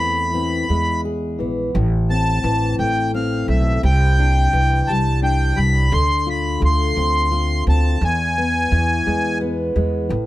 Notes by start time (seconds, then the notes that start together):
Already playing: E2 E3 A3 C4 B5
0.00 E4
0.34 E3 C4
0.69 E2 G#3
1.05 G#4
1.39 A#1 E3 B3
1.74 A1 A2
2.10 C4 A5
2.44 A1 E3
2.79 A1 A3 G5
3.14 C4 F5
3.48 B1 A3 E5
3.83 C2 C3 G5
4.19 D4
4.53 C2 E3
4.88 C2 G3 A5
5.22 D4 G5
5.55 C2 G3 B5
5.92 D2 D3 C6
6.27 F4 B5
6.61 D2 A3
6.65 C6
6.97 D2 C4
7.31 F4
7.67 D2 C4 A5
8.01 E2 G#5
8.38 B3
8.72 E2 E3
9.06 E2 G#3
9.41 B3
9.76 E2 G#3
10.09 A1 A2